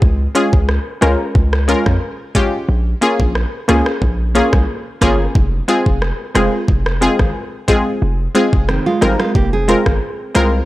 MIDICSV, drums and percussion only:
0, 0, Header, 1, 2, 480
1, 0, Start_track
1, 0, Key_signature, -4, "minor"
1, 0, Tempo, 666667
1, 14, Time_signature, 4, 2, 24, 8
1, 7669, End_track
2, 0, Start_track
2, 0, Title_t, "Drums"
2, 14, Note_on_c, 9, 36, 117
2, 86, Note_off_c, 9, 36, 0
2, 254, Note_on_c, 9, 42, 72
2, 326, Note_off_c, 9, 42, 0
2, 382, Note_on_c, 9, 36, 90
2, 454, Note_off_c, 9, 36, 0
2, 494, Note_on_c, 9, 37, 79
2, 566, Note_off_c, 9, 37, 0
2, 735, Note_on_c, 9, 42, 77
2, 736, Note_on_c, 9, 37, 97
2, 807, Note_off_c, 9, 42, 0
2, 808, Note_off_c, 9, 37, 0
2, 973, Note_on_c, 9, 36, 93
2, 1045, Note_off_c, 9, 36, 0
2, 1101, Note_on_c, 9, 37, 88
2, 1173, Note_off_c, 9, 37, 0
2, 1214, Note_on_c, 9, 42, 70
2, 1286, Note_off_c, 9, 42, 0
2, 1340, Note_on_c, 9, 37, 86
2, 1341, Note_on_c, 9, 36, 87
2, 1412, Note_off_c, 9, 37, 0
2, 1413, Note_off_c, 9, 36, 0
2, 1692, Note_on_c, 9, 42, 81
2, 1693, Note_on_c, 9, 36, 86
2, 1764, Note_off_c, 9, 42, 0
2, 1765, Note_off_c, 9, 36, 0
2, 2174, Note_on_c, 9, 42, 69
2, 2246, Note_off_c, 9, 42, 0
2, 2302, Note_on_c, 9, 36, 89
2, 2374, Note_off_c, 9, 36, 0
2, 2415, Note_on_c, 9, 37, 78
2, 2487, Note_off_c, 9, 37, 0
2, 2655, Note_on_c, 9, 42, 74
2, 2656, Note_on_c, 9, 37, 95
2, 2727, Note_off_c, 9, 42, 0
2, 2728, Note_off_c, 9, 37, 0
2, 2781, Note_on_c, 9, 37, 90
2, 2853, Note_off_c, 9, 37, 0
2, 2893, Note_on_c, 9, 36, 92
2, 2965, Note_off_c, 9, 36, 0
2, 3135, Note_on_c, 9, 42, 72
2, 3207, Note_off_c, 9, 42, 0
2, 3260, Note_on_c, 9, 37, 87
2, 3261, Note_on_c, 9, 36, 91
2, 3332, Note_off_c, 9, 37, 0
2, 3333, Note_off_c, 9, 36, 0
2, 3612, Note_on_c, 9, 42, 80
2, 3613, Note_on_c, 9, 36, 85
2, 3613, Note_on_c, 9, 37, 94
2, 3684, Note_off_c, 9, 42, 0
2, 3685, Note_off_c, 9, 36, 0
2, 3685, Note_off_c, 9, 37, 0
2, 3854, Note_on_c, 9, 36, 122
2, 3926, Note_off_c, 9, 36, 0
2, 4093, Note_on_c, 9, 42, 70
2, 4165, Note_off_c, 9, 42, 0
2, 4221, Note_on_c, 9, 36, 84
2, 4293, Note_off_c, 9, 36, 0
2, 4334, Note_on_c, 9, 37, 80
2, 4406, Note_off_c, 9, 37, 0
2, 4574, Note_on_c, 9, 42, 71
2, 4575, Note_on_c, 9, 37, 95
2, 4646, Note_off_c, 9, 42, 0
2, 4647, Note_off_c, 9, 37, 0
2, 4812, Note_on_c, 9, 36, 86
2, 4884, Note_off_c, 9, 36, 0
2, 4940, Note_on_c, 9, 37, 88
2, 5012, Note_off_c, 9, 37, 0
2, 5054, Note_on_c, 9, 42, 71
2, 5126, Note_off_c, 9, 42, 0
2, 5180, Note_on_c, 9, 37, 84
2, 5181, Note_on_c, 9, 36, 88
2, 5252, Note_off_c, 9, 37, 0
2, 5253, Note_off_c, 9, 36, 0
2, 5531, Note_on_c, 9, 42, 85
2, 5532, Note_on_c, 9, 36, 85
2, 5603, Note_off_c, 9, 42, 0
2, 5604, Note_off_c, 9, 36, 0
2, 6013, Note_on_c, 9, 42, 70
2, 6085, Note_off_c, 9, 42, 0
2, 6141, Note_on_c, 9, 36, 91
2, 6213, Note_off_c, 9, 36, 0
2, 6254, Note_on_c, 9, 37, 80
2, 6326, Note_off_c, 9, 37, 0
2, 6495, Note_on_c, 9, 42, 76
2, 6496, Note_on_c, 9, 37, 99
2, 6567, Note_off_c, 9, 42, 0
2, 6568, Note_off_c, 9, 37, 0
2, 6621, Note_on_c, 9, 37, 95
2, 6693, Note_off_c, 9, 37, 0
2, 6733, Note_on_c, 9, 36, 93
2, 6805, Note_off_c, 9, 36, 0
2, 6974, Note_on_c, 9, 42, 73
2, 7046, Note_off_c, 9, 42, 0
2, 7101, Note_on_c, 9, 36, 90
2, 7101, Note_on_c, 9, 37, 87
2, 7173, Note_off_c, 9, 36, 0
2, 7173, Note_off_c, 9, 37, 0
2, 7452, Note_on_c, 9, 42, 80
2, 7453, Note_on_c, 9, 37, 89
2, 7524, Note_off_c, 9, 42, 0
2, 7525, Note_off_c, 9, 37, 0
2, 7669, End_track
0, 0, End_of_file